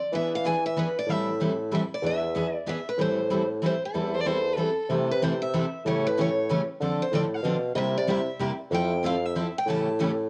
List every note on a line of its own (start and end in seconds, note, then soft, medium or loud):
0.00 0.11 D5 medium
0.12 0.89 E3 medium
0.12 0.33 E3 medium
0.12 0.33 B3 medium
0.12 0.33 D4 medium
0.12 0.33 G#4 medium
0.12 0.33 B4 medium
0.12 0.32 E5 medium
0.35 0.46 F5 medium
0.44 0.55 E3 medium
0.44 0.55 B3 medium
0.44 0.55 D4 medium
0.44 0.55 G#4 medium
0.44 0.56 B4 medium
0.44 0.63 G#5 medium
0.66 0.76 E5 medium
0.77 0.87 E3 medium
0.77 0.87 B3 medium
0.77 0.88 D4 medium
0.77 0.88 G#4 medium
0.77 0.88 B4 medium
0.77 0.97 B4 medium
0.99 1.10 D5 medium
1.07 1.83 A2 medium
1.07 1.28 E3 soft
1.07 1.29 G3 medium
1.07 1.29 C4 medium
1.07 1.29 E4 medium
1.07 1.29 A4 medium
1.07 1.73 E5 medium
1.40 1.51 E3 medium
1.40 1.51 G3 medium
1.40 1.51 C4 medium
1.40 1.51 E4 medium
1.40 1.51 A4 medium
1.72 1.82 E3 medium
1.72 1.83 G3 medium
1.72 1.83 C4 medium
1.72 1.83 E4 medium
1.72 1.83 A4 medium
1.72 1.80 E5 medium
1.94 2.04 D5 medium
2.02 2.58 E2 medium
2.02 2.23 E3 medium
2.02 2.23 B3 medium
2.02 2.23 D4 medium
2.02 2.24 G#4 medium
2.02 2.24 B4 medium
2.06 2.55 E5 medium
2.35 2.46 E3 medium
2.35 2.46 B3 medium
2.35 2.46 D4 medium
2.35 2.46 G#4 medium
2.35 2.46 B4 medium
2.55 2.68 D5 medium
2.67 2.78 E3 medium
2.67 2.78 B3 medium
2.67 2.78 D4 medium
2.67 2.78 G#4 medium
2.67 2.78 B4 medium
2.67 2.88 E5 medium
2.89 2.99 B4 medium
2.97 3.74 A2 medium
2.97 3.19 E3 medium
2.97 3.19 G3 medium
2.97 3.19 C4 medium
2.97 3.19 E4 medium
2.97 3.20 A4 medium
2.97 3.48 C5 medium
3.31 3.41 E3 medium
3.31 3.42 G3 medium
3.31 3.42 C4 medium
3.31 3.42 E4 medium
3.31 3.42 A4 medium
3.63 3.74 E3 medium
3.63 3.74 G3 medium
3.63 3.74 C4 medium
3.63 3.74 E4 medium
3.63 3.74 A4 medium
3.63 3.82 C5 medium
3.85 4.55 A4 medium
3.94 4.70 E2 medium
3.94 4.14 E3 medium
3.94 4.14 G3 medium
3.94 4.15 C4 medium
3.94 4.15 E4 medium
3.94 4.15 A4 medium
4.14 4.22 C5 medium
4.20 4.28 D5 medium
4.26 4.37 E3 medium
4.26 4.37 G3 medium
4.26 4.37 C4 medium
4.26 4.37 E4 medium
4.26 4.37 A4 medium
4.26 4.55 C5 medium
4.53 4.57 B4 medium
4.58 4.69 E3 medium
4.58 4.69 G3 medium
4.58 4.69 C4 medium
4.58 4.69 E4 medium
4.58 4.87 A4 medium
4.58 4.69 A4 medium
4.89 5.66 C3 loud
4.89 5.10 C3 medium
4.89 5.10 E3 medium
4.89 5.10 G3 medium
4.89 5.10 A3 medium
4.89 5.10 C4 medium
4.89 5.11 E4 medium
4.89 5.11 A4 medium
5.12 5.22 B4 medium
5.22 5.33 C3 medium
5.22 5.33 E3 medium
5.22 5.33 G3 medium
5.22 5.33 A3 medium
5.22 5.33 C4 medium
5.22 5.33 E4 medium
5.22 5.33 A4 medium
5.22 5.41 C5 medium
5.42 5.82 E5 medium
5.54 5.64 C3 medium
5.54 5.64 E3 medium
5.54 5.65 G3 medium
5.54 5.65 A3 medium
5.54 5.65 C4 medium
5.54 5.65 E4 medium
5.54 5.65 A4 medium
5.85 6.61 A2 loud
5.85 6.06 C#3 medium
5.85 6.06 E3 medium
5.85 6.06 G3 medium
5.85 6.06 A3 medium
5.85 6.06 C#4 medium
5.85 6.06 E4 medium
5.85 6.06 G4 medium
5.85 6.06 A4 medium
5.85 6.06 C#5 medium
6.07 6.18 B4 medium
6.17 6.28 C#3 medium
6.17 6.28 E3 medium
6.17 6.28 G3 medium
6.17 6.29 A3 medium
6.17 6.28 C#4 medium
6.17 6.28 E4 medium
6.17 6.29 G4 medium
6.17 6.28 A4 medium
6.17 6.67 C#5 medium
6.49 6.60 C#3 medium
6.49 6.60 E3 medium
6.49 6.60 G3 medium
6.49 6.60 A3 medium
6.49 6.60 C#4 medium
6.49 6.60 E4 medium
6.49 6.61 G4 medium
6.49 6.60 A4 medium
6.80 7.06 D3 loud
6.80 7.01 D3 medium
6.80 7.01 F3 medium
6.80 7.01 C4 medium
6.80 7.01 D4 medium
6.80 7.01 A4 medium
7.02 7.14 C5 medium
7.11 7.39 A2 medium
7.11 7.23 D3 medium
7.11 7.24 F3 medium
7.11 7.24 C4 medium
7.11 7.24 D4 medium
7.11 7.24 A4 medium
7.11 7.20 D5 medium
7.34 7.75 F5 medium
7.43 7.70 B2 medium
7.43 7.55 D3 medium
7.43 7.55 F3 medium
7.43 7.55 C4 medium
7.43 7.55 D4 medium
7.43 7.56 A4 medium
7.75 8.31 C3 medium
7.75 7.96 C3 medium
7.75 7.96 G3 medium
7.75 7.96 A#3 medium
7.75 7.96 E4 medium
7.75 7.96 G4 medium
7.75 7.77 D#5 medium
7.75 7.97 E5 medium
7.98 8.09 D5 medium
8.07 8.18 C3 medium
8.07 8.19 G3 medium
8.07 8.19 A#3 medium
8.07 8.19 E4 medium
8.07 8.19 G4 medium
8.07 8.57 E5 medium
8.39 8.50 C3 medium
8.39 8.51 G3 medium
8.39 8.51 A#3 medium
8.39 8.51 E4 medium
8.39 8.51 G4 medium
8.70 9.47 F2 loud
8.70 8.91 F3 medium
8.70 8.92 C4 medium
8.70 8.92 E4 medium
8.70 8.92 A4 medium
8.70 9.05 G5 medium
9.03 9.14 F3 medium
9.03 9.14 C4 medium
9.03 9.14 E4 medium
9.03 9.14 A4 medium
9.03 9.25 F5 medium
9.25 9.56 E5 medium
9.35 9.46 F3 medium
9.35 9.46 C4 medium
9.35 9.46 E4 medium
9.35 9.47 A4 medium
9.58 9.68 G5 loud
9.66 10.29 A2 loud
9.66 9.87 C#3 medium
9.66 9.87 E3 medium
9.66 9.88 G3 medium
9.66 9.88 A3 medium
9.66 9.88 C#4 medium
9.66 9.88 E4 medium
9.66 9.88 G4 medium
9.66 9.88 A4 medium
9.66 9.98 A5 medium
9.99 10.10 C#3 medium
9.99 10.10 E3 medium
9.99 10.10 G3 medium
9.99 10.10 A3 medium
9.99 10.10 C#4 medium
9.99 10.10 E4 loud
9.99 10.11 G4 loud
9.99 10.10 A4 loud